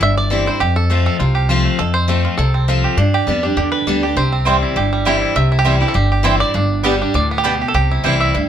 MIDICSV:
0, 0, Header, 1, 5, 480
1, 0, Start_track
1, 0, Key_signature, 0, "major"
1, 0, Tempo, 297619
1, 976, Time_signature, 4, 2, 24, 8
1, 13689, End_track
2, 0, Start_track
2, 0, Title_t, "Mandolin"
2, 0, Program_c, 0, 25
2, 7179, Note_on_c, 0, 60, 90
2, 7192, Note_on_c, 0, 64, 92
2, 7194, Note_on_c, 0, 72, 108
2, 7199, Note_on_c, 0, 79, 104
2, 7345, Note_off_c, 0, 60, 0
2, 7352, Note_off_c, 0, 64, 0
2, 7352, Note_off_c, 0, 72, 0
2, 7355, Note_off_c, 0, 79, 0
2, 8154, Note_on_c, 0, 60, 87
2, 8159, Note_on_c, 0, 64, 108
2, 8167, Note_on_c, 0, 72, 95
2, 8172, Note_on_c, 0, 79, 103
2, 8313, Note_off_c, 0, 60, 0
2, 8316, Note_off_c, 0, 64, 0
2, 8319, Note_off_c, 0, 72, 0
2, 8322, Note_off_c, 0, 79, 0
2, 9107, Note_on_c, 0, 60, 98
2, 9111, Note_on_c, 0, 64, 100
2, 9114, Note_on_c, 0, 72, 94
2, 9124, Note_on_c, 0, 79, 109
2, 9270, Note_off_c, 0, 60, 0
2, 9272, Note_off_c, 0, 64, 0
2, 9273, Note_off_c, 0, 72, 0
2, 9278, Note_off_c, 0, 79, 0
2, 10060, Note_on_c, 0, 60, 99
2, 10067, Note_on_c, 0, 64, 117
2, 10072, Note_on_c, 0, 72, 108
2, 10075, Note_on_c, 0, 79, 114
2, 10228, Note_off_c, 0, 60, 0
2, 10231, Note_off_c, 0, 64, 0
2, 10233, Note_off_c, 0, 72, 0
2, 10235, Note_off_c, 0, 79, 0
2, 11022, Note_on_c, 0, 59, 100
2, 11035, Note_on_c, 0, 67, 102
2, 11037, Note_on_c, 0, 74, 109
2, 11042, Note_on_c, 0, 79, 115
2, 11190, Note_off_c, 0, 59, 0
2, 11196, Note_off_c, 0, 67, 0
2, 11197, Note_off_c, 0, 74, 0
2, 11200, Note_off_c, 0, 79, 0
2, 11994, Note_on_c, 0, 59, 97
2, 12000, Note_on_c, 0, 67, 106
2, 12006, Note_on_c, 0, 74, 116
2, 12013, Note_on_c, 0, 79, 112
2, 12157, Note_off_c, 0, 59, 0
2, 12161, Note_off_c, 0, 67, 0
2, 12163, Note_off_c, 0, 74, 0
2, 12167, Note_off_c, 0, 79, 0
2, 12958, Note_on_c, 0, 60, 90
2, 12964, Note_on_c, 0, 64, 90
2, 12971, Note_on_c, 0, 72, 103
2, 12975, Note_on_c, 0, 79, 94
2, 13121, Note_off_c, 0, 60, 0
2, 13125, Note_off_c, 0, 64, 0
2, 13128, Note_off_c, 0, 72, 0
2, 13130, Note_off_c, 0, 79, 0
2, 13689, End_track
3, 0, Start_track
3, 0, Title_t, "Five-string banjo"
3, 0, Program_c, 1, 105
3, 0, Note_on_c, 1, 55, 59
3, 0, Note_on_c, 1, 64, 65
3, 43, Note_on_c, 1, 76, 111
3, 225, Note_off_c, 1, 55, 0
3, 276, Note_off_c, 1, 76, 0
3, 282, Note_on_c, 1, 74, 102
3, 455, Note_off_c, 1, 64, 0
3, 497, Note_on_c, 1, 64, 63
3, 759, Note_off_c, 1, 64, 0
3, 765, Note_on_c, 1, 72, 87
3, 771, Note_off_c, 1, 74, 0
3, 973, Note_on_c, 1, 67, 86
3, 988, Note_off_c, 1, 72, 0
3, 1211, Note_off_c, 1, 67, 0
3, 1228, Note_on_c, 1, 69, 86
3, 1452, Note_on_c, 1, 57, 60
3, 1694, Note_off_c, 1, 69, 0
3, 1714, Note_on_c, 1, 69, 84
3, 1922, Note_off_c, 1, 69, 0
3, 1928, Note_on_c, 1, 65, 62
3, 2136, Note_off_c, 1, 57, 0
3, 2175, Note_on_c, 1, 67, 60
3, 2383, Note_off_c, 1, 65, 0
3, 2402, Note_on_c, 1, 65, 61
3, 2664, Note_on_c, 1, 57, 50
3, 2839, Note_off_c, 1, 67, 0
3, 2883, Note_on_c, 1, 69, 87
3, 3089, Note_off_c, 1, 65, 0
3, 3125, Note_on_c, 1, 72, 103
3, 3149, Note_off_c, 1, 69, 0
3, 3323, Note_off_c, 1, 57, 0
3, 3372, Note_on_c, 1, 57, 59
3, 3619, Note_off_c, 1, 72, 0
3, 3626, Note_on_c, 1, 65, 66
3, 3825, Note_off_c, 1, 65, 0
3, 3831, Note_on_c, 1, 69, 78
3, 4053, Note_off_c, 1, 57, 0
3, 4100, Note_on_c, 1, 60, 58
3, 4322, Note_off_c, 1, 69, 0
3, 4329, Note_on_c, 1, 65, 56
3, 4583, Note_on_c, 1, 67, 56
3, 4759, Note_off_c, 1, 60, 0
3, 4791, Note_off_c, 1, 65, 0
3, 4797, Note_on_c, 1, 62, 61
3, 4806, Note_off_c, 1, 67, 0
3, 5066, Note_on_c, 1, 67, 73
3, 5280, Note_on_c, 1, 55, 60
3, 5485, Note_off_c, 1, 62, 0
3, 5533, Note_on_c, 1, 62, 65
3, 5761, Note_off_c, 1, 67, 0
3, 5761, Note_on_c, 1, 67, 74
3, 5988, Note_off_c, 1, 67, 0
3, 5994, Note_on_c, 1, 71, 96
3, 6195, Note_off_c, 1, 62, 0
3, 6246, Note_on_c, 1, 62, 62
3, 6502, Note_on_c, 1, 67, 50
3, 6718, Note_off_c, 1, 62, 0
3, 6724, Note_on_c, 1, 72, 84
3, 6732, Note_off_c, 1, 71, 0
3, 6974, Note_on_c, 1, 60, 74
3, 7197, Note_off_c, 1, 55, 0
3, 7203, Note_on_c, 1, 55, 55
3, 7408, Note_off_c, 1, 72, 0
3, 7460, Note_on_c, 1, 64, 63
3, 7636, Note_off_c, 1, 60, 0
3, 7682, Note_off_c, 1, 67, 0
3, 7688, Note_on_c, 1, 67, 60
3, 7939, Note_off_c, 1, 55, 0
3, 7946, Note_on_c, 1, 55, 59
3, 8119, Note_off_c, 1, 64, 0
3, 8161, Note_off_c, 1, 67, 0
3, 8167, Note_on_c, 1, 67, 60
3, 8417, Note_on_c, 1, 64, 53
3, 8645, Note_on_c, 1, 76, 94
3, 8881, Note_off_c, 1, 64, 0
3, 8900, Note_on_c, 1, 64, 68
3, 9004, Note_off_c, 1, 67, 0
3, 9011, Note_on_c, 1, 67, 100
3, 9023, Note_off_c, 1, 76, 0
3, 9117, Note_off_c, 1, 55, 0
3, 9123, Note_on_c, 1, 55, 61
3, 9364, Note_off_c, 1, 67, 0
3, 9383, Note_on_c, 1, 67, 66
3, 9481, Note_off_c, 1, 64, 0
3, 9488, Note_on_c, 1, 69, 84
3, 9591, Note_off_c, 1, 69, 0
3, 9597, Note_off_c, 1, 67, 0
3, 9597, Note_on_c, 1, 67, 90
3, 9847, Note_off_c, 1, 67, 0
3, 9867, Note_on_c, 1, 67, 59
3, 10097, Note_on_c, 1, 64, 64
3, 10326, Note_on_c, 1, 74, 96
3, 10559, Note_off_c, 1, 64, 0
3, 10566, Note_on_c, 1, 62, 70
3, 10990, Note_off_c, 1, 74, 0
3, 11043, Note_off_c, 1, 55, 0
3, 11049, Note_on_c, 1, 55, 64
3, 11253, Note_off_c, 1, 62, 0
3, 11318, Note_on_c, 1, 62, 68
3, 11535, Note_on_c, 1, 74, 88
3, 11736, Note_off_c, 1, 55, 0
3, 11787, Note_off_c, 1, 74, 0
3, 11793, Note_on_c, 1, 59, 64
3, 11903, Note_off_c, 1, 67, 0
3, 11903, Note_on_c, 1, 67, 83
3, 11973, Note_off_c, 1, 62, 0
3, 12015, Note_on_c, 1, 62, 60
3, 12262, Note_off_c, 1, 67, 0
3, 12281, Note_on_c, 1, 67, 54
3, 12392, Note_on_c, 1, 69, 84
3, 12452, Note_off_c, 1, 59, 0
3, 12474, Note_off_c, 1, 67, 0
3, 12494, Note_on_c, 1, 67, 87
3, 12495, Note_off_c, 1, 62, 0
3, 12502, Note_off_c, 1, 69, 0
3, 12764, Note_on_c, 1, 64, 73
3, 12984, Note_on_c, 1, 55, 61
3, 13234, Note_on_c, 1, 76, 102
3, 13255, Note_off_c, 1, 67, 0
3, 13419, Note_off_c, 1, 64, 0
3, 13458, Note_on_c, 1, 64, 57
3, 13668, Note_off_c, 1, 55, 0
3, 13689, Note_off_c, 1, 64, 0
3, 13689, Note_off_c, 1, 76, 0
3, 13689, End_track
4, 0, Start_track
4, 0, Title_t, "Steel-string acoustic guitar"
4, 0, Program_c, 2, 25
4, 10, Note_on_c, 2, 43, 99
4, 488, Note_on_c, 2, 52, 95
4, 504, Note_on_c, 2, 55, 81
4, 517, Note_on_c, 2, 60, 100
4, 525, Note_on_c, 2, 64, 98
4, 723, Note_off_c, 2, 64, 0
4, 737, Note_off_c, 2, 52, 0
4, 742, Note_on_c, 2, 64, 62
4, 745, Note_off_c, 2, 55, 0
4, 752, Note_off_c, 2, 60, 0
4, 784, Note_on_c, 2, 60, 46
4, 927, Note_off_c, 2, 43, 0
4, 961, Note_off_c, 2, 64, 0
4, 981, Note_on_c, 2, 41, 87
4, 982, Note_off_c, 2, 60, 0
4, 1447, Note_on_c, 2, 53, 69
4, 1456, Note_on_c, 2, 57, 74
4, 1463, Note_on_c, 2, 60, 89
4, 1474, Note_on_c, 2, 65, 100
4, 1891, Note_off_c, 2, 41, 0
4, 1906, Note_off_c, 2, 53, 0
4, 1911, Note_off_c, 2, 57, 0
4, 1915, Note_off_c, 2, 60, 0
4, 1920, Note_off_c, 2, 65, 0
4, 1936, Note_on_c, 2, 48, 86
4, 2405, Note_on_c, 2, 53, 92
4, 2415, Note_on_c, 2, 57, 93
4, 2428, Note_on_c, 2, 60, 108
4, 2435, Note_on_c, 2, 65, 97
4, 2847, Note_off_c, 2, 48, 0
4, 2864, Note_off_c, 2, 53, 0
4, 2869, Note_off_c, 2, 57, 0
4, 2876, Note_off_c, 2, 60, 0
4, 2879, Note_off_c, 2, 65, 0
4, 2887, Note_on_c, 2, 41, 95
4, 3350, Note_on_c, 2, 53, 86
4, 3360, Note_on_c, 2, 57, 83
4, 3372, Note_on_c, 2, 60, 90
4, 3379, Note_on_c, 2, 65, 84
4, 3801, Note_off_c, 2, 41, 0
4, 3816, Note_off_c, 2, 53, 0
4, 3821, Note_off_c, 2, 57, 0
4, 3827, Note_off_c, 2, 60, 0
4, 3830, Note_off_c, 2, 65, 0
4, 3849, Note_on_c, 2, 48, 98
4, 4322, Note_on_c, 2, 53, 97
4, 4324, Note_on_c, 2, 57, 92
4, 4338, Note_on_c, 2, 60, 89
4, 4347, Note_on_c, 2, 65, 109
4, 4762, Note_off_c, 2, 48, 0
4, 4781, Note_off_c, 2, 53, 0
4, 4782, Note_off_c, 2, 57, 0
4, 4789, Note_off_c, 2, 60, 0
4, 4793, Note_off_c, 2, 65, 0
4, 4800, Note_on_c, 2, 43, 96
4, 5271, Note_on_c, 2, 55, 82
4, 5285, Note_on_c, 2, 59, 77
4, 5297, Note_on_c, 2, 62, 95
4, 5309, Note_on_c, 2, 67, 97
4, 5516, Note_off_c, 2, 67, 0
4, 5523, Note_off_c, 2, 55, 0
4, 5530, Note_off_c, 2, 59, 0
4, 5535, Note_on_c, 2, 67, 63
4, 5536, Note_off_c, 2, 62, 0
4, 5561, Note_on_c, 2, 62, 59
4, 5716, Note_off_c, 2, 43, 0
4, 5753, Note_off_c, 2, 67, 0
4, 5754, Note_on_c, 2, 50, 94
4, 5765, Note_off_c, 2, 62, 0
4, 6239, Note_on_c, 2, 55, 98
4, 6254, Note_on_c, 2, 59, 91
4, 6262, Note_on_c, 2, 62, 95
4, 6270, Note_on_c, 2, 67, 107
4, 6474, Note_off_c, 2, 67, 0
4, 6486, Note_off_c, 2, 55, 0
4, 6493, Note_on_c, 2, 67, 65
4, 6494, Note_off_c, 2, 59, 0
4, 6498, Note_off_c, 2, 62, 0
4, 6530, Note_on_c, 2, 62, 52
4, 6673, Note_off_c, 2, 50, 0
4, 6711, Note_off_c, 2, 67, 0
4, 6717, Note_on_c, 2, 48, 96
4, 6730, Note_off_c, 2, 62, 0
4, 7187, Note_on_c, 2, 52, 74
4, 7203, Note_on_c, 2, 55, 81
4, 7215, Note_on_c, 2, 60, 96
4, 7219, Note_on_c, 2, 64, 81
4, 7635, Note_off_c, 2, 48, 0
4, 7653, Note_off_c, 2, 52, 0
4, 7660, Note_off_c, 2, 55, 0
4, 7666, Note_off_c, 2, 60, 0
4, 7668, Note_off_c, 2, 64, 0
4, 7676, Note_on_c, 2, 43, 88
4, 8149, Note_on_c, 2, 52, 86
4, 8163, Note_on_c, 2, 55, 86
4, 8172, Note_on_c, 2, 60, 105
4, 8180, Note_on_c, 2, 64, 112
4, 8595, Note_off_c, 2, 43, 0
4, 8614, Note_off_c, 2, 52, 0
4, 8621, Note_off_c, 2, 55, 0
4, 8625, Note_off_c, 2, 60, 0
4, 8629, Note_off_c, 2, 64, 0
4, 8639, Note_on_c, 2, 48, 92
4, 9107, Note_on_c, 2, 52, 80
4, 9124, Note_on_c, 2, 55, 83
4, 9131, Note_on_c, 2, 60, 81
4, 9140, Note_on_c, 2, 64, 93
4, 9339, Note_off_c, 2, 64, 0
4, 9359, Note_on_c, 2, 64, 68
4, 9361, Note_off_c, 2, 52, 0
4, 9370, Note_off_c, 2, 55, 0
4, 9373, Note_off_c, 2, 60, 0
4, 9392, Note_on_c, 2, 60, 56
4, 9557, Note_off_c, 2, 48, 0
4, 9582, Note_on_c, 2, 43, 91
4, 9585, Note_off_c, 2, 64, 0
4, 9601, Note_off_c, 2, 60, 0
4, 10048, Note_on_c, 2, 52, 105
4, 10063, Note_on_c, 2, 55, 96
4, 10075, Note_on_c, 2, 60, 108
4, 10077, Note_on_c, 2, 64, 110
4, 10294, Note_off_c, 2, 64, 0
4, 10313, Note_off_c, 2, 52, 0
4, 10314, Note_on_c, 2, 64, 55
4, 10320, Note_off_c, 2, 55, 0
4, 10326, Note_off_c, 2, 60, 0
4, 10354, Note_on_c, 2, 60, 49
4, 10510, Note_off_c, 2, 43, 0
4, 10544, Note_off_c, 2, 64, 0
4, 10548, Note_on_c, 2, 43, 91
4, 10564, Note_off_c, 2, 60, 0
4, 11026, Note_on_c, 2, 55, 85
4, 11041, Note_on_c, 2, 59, 82
4, 11056, Note_on_c, 2, 62, 89
4, 11062, Note_on_c, 2, 67, 96
4, 11246, Note_off_c, 2, 67, 0
4, 11265, Note_on_c, 2, 67, 59
4, 11283, Note_off_c, 2, 55, 0
4, 11288, Note_off_c, 2, 62, 0
4, 11291, Note_off_c, 2, 59, 0
4, 11307, Note_on_c, 2, 62, 54
4, 11475, Note_off_c, 2, 43, 0
4, 11501, Note_off_c, 2, 67, 0
4, 11518, Note_on_c, 2, 45, 88
4, 11522, Note_off_c, 2, 62, 0
4, 11983, Note_off_c, 2, 45, 0
4, 12010, Note_on_c, 2, 47, 96
4, 12470, Note_off_c, 2, 47, 0
4, 12489, Note_on_c, 2, 48, 92
4, 12963, Note_on_c, 2, 52, 82
4, 12978, Note_on_c, 2, 55, 73
4, 12996, Note_on_c, 2, 60, 84
4, 12999, Note_on_c, 2, 64, 104
4, 13410, Note_off_c, 2, 48, 0
4, 13428, Note_off_c, 2, 52, 0
4, 13436, Note_off_c, 2, 55, 0
4, 13445, Note_off_c, 2, 60, 0
4, 13447, Note_off_c, 2, 64, 0
4, 13461, Note_on_c, 2, 43, 91
4, 13689, Note_off_c, 2, 43, 0
4, 13689, End_track
5, 0, Start_track
5, 0, Title_t, "Upright bass"
5, 0, Program_c, 3, 32
5, 9, Note_on_c, 3, 31, 86
5, 756, Note_off_c, 3, 31, 0
5, 972, Note_on_c, 3, 41, 94
5, 1717, Note_off_c, 3, 41, 0
5, 1926, Note_on_c, 3, 36, 94
5, 2672, Note_off_c, 3, 36, 0
5, 2885, Note_on_c, 3, 41, 90
5, 3630, Note_off_c, 3, 41, 0
5, 3833, Note_on_c, 3, 36, 84
5, 4582, Note_off_c, 3, 36, 0
5, 4789, Note_on_c, 3, 43, 81
5, 5168, Note_off_c, 3, 43, 0
5, 5269, Note_on_c, 3, 41, 90
5, 5683, Note_off_c, 3, 41, 0
5, 5747, Note_on_c, 3, 40, 89
5, 6162, Note_off_c, 3, 40, 0
5, 6226, Note_on_c, 3, 38, 74
5, 6641, Note_off_c, 3, 38, 0
5, 6703, Note_on_c, 3, 36, 84
5, 7456, Note_off_c, 3, 36, 0
5, 7672, Note_on_c, 3, 31, 92
5, 8422, Note_off_c, 3, 31, 0
5, 8635, Note_on_c, 3, 36, 90
5, 9385, Note_off_c, 3, 36, 0
5, 9592, Note_on_c, 3, 31, 100
5, 10344, Note_off_c, 3, 31, 0
5, 10555, Note_on_c, 3, 31, 101
5, 11307, Note_off_c, 3, 31, 0
5, 11513, Note_on_c, 3, 38, 91
5, 12268, Note_off_c, 3, 38, 0
5, 12479, Note_on_c, 3, 36, 93
5, 12859, Note_off_c, 3, 36, 0
5, 12972, Note_on_c, 3, 36, 87
5, 13383, Note_off_c, 3, 36, 0
5, 13464, Note_on_c, 3, 38, 88
5, 13689, Note_off_c, 3, 38, 0
5, 13689, End_track
0, 0, End_of_file